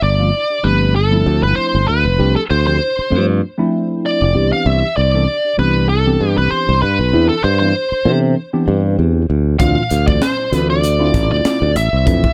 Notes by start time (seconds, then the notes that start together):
0.02 G1 D4 F4 D5
0.19 F3 A3 C4 D4 F4
0.50 D4 G4
0.63 G1 F3 A3 C4 D4 G4 B4
0.96 A4
1.11 F3 A3 C4 D4 E4
1.26 D2
1.43 G1 B4
1.55 C5
1.75 G1
1.88 D2 B4
2.05 F1
2.18 C2 F3 A3 C4 D4 G4
2.36 A4
2.49 D2 D4 A4 C5
2.66 F3 A3 C4 D4 G4 C5
2.80 D4 E4
2.97 D4 G4, muted fingered electric bass stroke
3.10 G2 F3 A3 C4 D4 F4
3.58 F3 A3 C4 D4 E4
4.06 D5
4.22 F1
4.35 C2 E3 B3 C4 D4 G4
4.53 F5
4.66 C2 E5
4.96 C2 D4 A4 D5
5.14 E3 B3 C4 D4 A4
5.27 D4 G4
5.45 D4 G4
5.58 C2 E3 B3 C4 D4 G4 B4
5.89 A4
6.06 E3 B3 C4 D4 G4
6.21 G2
6.37 C2 B4
6.51 C5, muted fingered electric bass stroke
6.69 C2
6.82 G2 B4
6.99 B1
7.13 E2 E3 B3 C4 D4 E4
7.29 A4
7.44 G2 D4 A4 C5
7.59 E3 B3 C4 D4 E4 C5
7.92 D4 A4, muted fingered electric bass stroke
8.05 C3 E3 B3 C4 D4 A4
8.53 E3 B3 C4 D4 G4
8.68 G2
8.99 E2
9.30 D2
9.59 D2 E3 A3 C4 D4 F4 F5, kick, closed hi-hat
9.90 D2 D4 G4, closed hi-hat
10.07 E3 A3 C4 D4 F4 D5, kick
10.22 C5, snare, closed hi-hat
10.38 D4 E4
10.52 D2 E3 A3 C4 D4 F4 B4, snare, closed hi-hat
10.70 D5
10.84 closed hi-hat
10.99 A3 C4 D4 E4 F4
11.14 A1, kick, snare, closed hi-hat
11.32 D2 D5
11.45 muted fingered electric bass stroke, snare, closed hi-hat
11.62 D2
11.76 A1 E5, closed hi-hat
11.93 C2
12.06 F2 E3 A3 C4 D4 E4, kick, closed hi-hat
12.24 kick